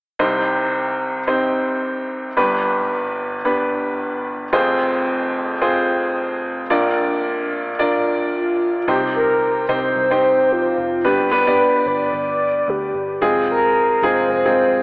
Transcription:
0.19 upright piano C2 C3 C4 D#4 G4 C5
1.27 upright piano C4 D#4 G4 C5
2.37 upright piano G1 G2 B3 D4 G4 B4
3.45 upright piano B3 D4 G4 B4
4.53 upright piano F1 F2 C4 F4 G#4 C5
5.61 upright piano C4 F4 G#4 C5
6.70 upright piano A#1 A#2 D4 F4 A#4 D5
7.79 upright piano D4 F4 A#4 D5
8.35 soft synth lead F4
8.88 picked electric bass C2, upright piano C3 C4 D#4 G4 C5, soft synth lead G4
9.15 soft synth lead A#4
9.69 picked electric bass C2, upright piano C4 D#4 G4 C5, soft synth lead C5
9.96 picked electric bass C2, soft synth lead C5
10.11 upright piano C4 D#4 G4 C5
10.52 soft synth lead F4
10.78 picked electric bass F1
11.04 picked electric bass G1, upright piano G2 B3 D4 G4 B4, soft synth lead G4
11.31 upright piano B3 D4 G4 B4, soft synth lead B4
11.47 upright piano B3 D4 G4 D5
11.86 picked electric bass G1, soft synth lead D5
12.13 picked electric bass G1, soft synth lead D5
12.68 picked electric bass D2, soft synth lead G4
12.94 picked electric bass G1
13.21 picked electric bass F1, upright piano G#3 C4 F4 G#4, soft synth lead G#4
13.51 soft synth lead A#4
14.02 picked electric bass F1, upright piano G#3 C4 F4 G#4, soft synth lead C5
14.30 picked electric bass F1, soft synth lead C5
14.45 upright piano G#3 C4 F4 G#4

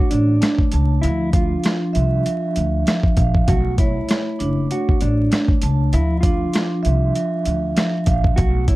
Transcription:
Already playing: vibraphone A3 D4 C#5
0.11 upright bass A1, clean electric guitar D4, closed hi-hat
0.41 vibraphone A3, cross-stick, snare, closed hi-hat
0.58 kick
0.72 upright bass C#2, vibraphone A5, closed hi-hat
1.02 upright bass D2, vibraphone F3, clean electric guitar E4, closed hi-hat
1.33 vibraphone D4, clean electric guitar F4, kick, closed hi-hat
1.64 vibraphone F3, cross-stick, snare, closed hi-hat
1.93 upright bass C2, vibraphone E5, closed hi-hat
2.26 vibraphone F3, closed hi-hat
2.56 upright bass D2, closed hi-hat
2.87 vibraphone F3, cross-stick, snare, closed hi-hat
3.03 kick
3.17 upright bass A#1, vibraphone F5, kick, closed hi-hat
3.35 kick
3.48 upright bass B1, vibraphone A3, clean electric guitar F#4, kick, closed hi-hat
3.78 clean electric guitar E4, vibraphone C#5, kick, closed hi-hat
4.09 vibraphone A3, cross-stick, snare, closed hi-hat
4.39 upright bass F#1, vibraphone D4, closed hi-hat
4.71 vibraphone A3, clean electric guitar F#4, closed hi-hat
4.89 kick
5.01 upright bass A1, clean electric guitar D4, closed hi-hat
5.31 vibraphone A3, cross-stick, snare, closed hi-hat
5.48 kick
5.62 upright bass C#2, vibraphone A5, closed hi-hat
5.93 upright bass D2, vibraphone F3, clean electric guitar E4, closed hi-hat
6.21 vibraphone D4, clean electric guitar F4, kick, closed hi-hat
6.53 vibraphone F3, cross-stick, snare, closed hi-hat
6.83 upright bass C2, vibraphone E5, closed hi-hat
7.15 vibraphone F3, closed hi-hat
7.45 upright bass D2, closed hi-hat
7.77 vibraphone F3, cross-stick, snare, closed hi-hat
8.06 upright bass A#1, vibraphone F5, kick, closed hi-hat
8.24 kick
8.36 upright bass B1, vibraphone A3, clean electric guitar F#4, kick, closed hi-hat
8.68 clean electric guitar E4, vibraphone C#5, kick, closed hi-hat

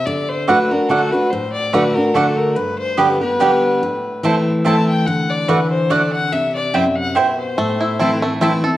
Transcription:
0.06 steel-string acoustic guitar D3, fiddle D5
0.29 fiddle C5
0.47 steel-string acoustic guitar D3 A3 D4 F#4, mandolin A3 F#4 D5 F#5, fiddle B4
0.71 steel-string acoustic guitar D4 F#4, fiddle A#4
0.89 steel-string acoustic guitar D3 A3 D4 F#4, mandolin A3 F#4 D5 F#5, fiddle A4
1.12 steel-string acoustic guitar D4 F#4, fiddle B4
1.31 steel-string acoustic guitar A2, fiddle C5
1.52 fiddle D5
1.73 steel-string acoustic guitar D3 A3 D4 F#4, mandolin A3 F#4 D5 F#5, fiddle B4
1.95 steel-string acoustic guitar D4 F#4, fiddle A#4
2.14 steel-string acoustic guitar D3 A3 D4 F#4, mandolin A3 F#4 D5 F#5, fiddle A4
2.37 fiddle A#4
2.56 steel-string acoustic guitar G2, fiddle B4
2.79 fiddle C5
2.98 steel-string acoustic guitar D3 G3 B3 G4, mandolin B3 G4 D5 G5, fiddle B4
3.21 steel-string acoustic guitar B3 G4, fiddle B4
3.40 steel-string acoustic guitar D3 G3 B3 G4, mandolin B3 G4 D5 G5
3.83 steel-string acoustic guitar A2
4.23 steel-string acoustic guitar E3 A3 C4 E4, mandolin C4 E4 C5 A5
4.65 steel-string acoustic guitar E3 A3 C4 E4, mandolin C4 E4 C5 A5, fiddle A5
4.88 fiddle G5
5.07 steel-string acoustic guitar D3, fiddle F#5
5.30 fiddle D5
5.48 steel-string acoustic guitar E3, mandolin A3 F#4 D5 F#5, fiddle B4
5.71 fiddle C5
5.90 steel-string acoustic guitar D3, mandolin A3 F#4 D5 F#5, fiddle D5
6.13 fiddle F#5
6.33 steel-string acoustic guitar C3, fiddle E5
6.55 fiddle D5
6.74 steel-string acoustic guitar F#2, mandolin C4 E4 C5 G5, fiddle E5
6.96 fiddle F#5
7.15 steel-string acoustic guitar B2, mandolin C4 E4 C5 G5, fiddle E5
7.39 fiddle C5
7.58 steel-string acoustic guitar A2, five-string banjo A3
7.80 five-string banjo E4
7.99 steel-string acoustic guitar E3 A3 C4 E4, mandolin C4 E4 C5 A5, five-string banjo E4
8.22 five-string banjo A3, steel-string acoustic guitar C4 E4
8.41 steel-string acoustic guitar E3 A3 C4 E4, mandolin C4 E4 C5 A5, five-string banjo E4
8.64 steel-string acoustic guitar C4 E4, five-string banjo A4

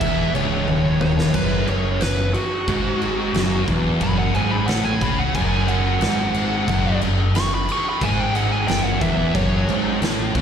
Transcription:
Already playing: lead electric guitar E5
0.01 fingered electric bass E1, distorted electric guitar E2, kick, crash
0.34 fingered electric bass C#1, distorted electric guitar C#2, lead electric guitar C#5, crash
0.68 fingered electric bass D#1, distorted electric guitar D#2, high tom
1.01 lead electric guitar C#5, mid tom
1.19 snare
1.34 fingered electric bass F#1, distorted electric guitar F#2, lead electric guitar B4, kick, crash
1.67 fingered electric bass F#1, distorted electric guitar F#2, lead electric guitar C#5, crash
2.00 fingered electric bass F#1, distorted electric guitar F#2, lead electric guitar B4, snare, crash
2.34 lead electric guitar F#4, crash
2.68 fingered electric bass G#1, distorted electric guitar G#2, kick, crash
3.02 crash
3.34 fingered electric bass F#1, distorted electric guitar F#2, snare, crash
3.68 fingered electric bass E1, distorted electric guitar E2, kick, crash
4.00 fingered electric bass F#1, distorted electric guitar F#2, lead electric guitar B5, kick, crash
4.19 lead electric guitar F#5
4.34 fingered electric bass G#1, distorted electric guitar G#2, lead electric guitar G#5, crash
4.51 lead electric guitar B5
4.67 fingered electric bass A1, distorted electric guitar A2, lead electric guitar F#5, snare, crash
4.84 lead electric guitar G#5
5.01 fingered electric bass C#2, distorted electric guitar C#3, lead electric guitar B5, kick, crash
5.19 lead electric guitar F#5
5.34 fingered electric bass F#1, distorted electric guitar F#2, lead electric guitar G#5, kick, crash
5.68 lead electric guitar F#5, crash
6.01 fingered electric bass G#1, distorted electric guitar G#2, snare, crash
6.34 crash
6.68 fingered electric bass F#1, distorted electric guitar F#2, kick, crash
7.01 fingered electric bass F#1, distorted electric guitar F#2, crash
7.35 fingered electric bass F#1, distorted electric guitar F#2, lead electric guitar C#6, snare, crash
7.54 lead electric guitar B5
7.69 lead electric guitar C#6, crash
7.89 lead electric guitar B5
8.01 fingered electric bass G#1, distorted electric guitar G#2, lead electric guitar G#5, kick, crash
8.20 lead electric guitar G5
8.35 lead electric guitar F#5, crash
8.52 lead electric guitar G#5
8.68 fingered electric bass F#1, distorted electric guitar F#2, lead electric guitar G5, snare, crash
8.83 lead electric guitar F#5
9.01 fingered electric bass E1, distorted electric guitar E2, lead electric guitar E5, kick, crash
9.35 fingered electric bass F#1, distorted electric guitar F#2, lead electric guitar C#5, kick, crash
9.69 fingered electric bass G#1, distorted electric guitar G#2, crash
10.01 fingered electric bass A1, distorted electric guitar A2, snare, crash
10.35 fingered electric bass C#2, distorted electric guitar C#3, kick, crash

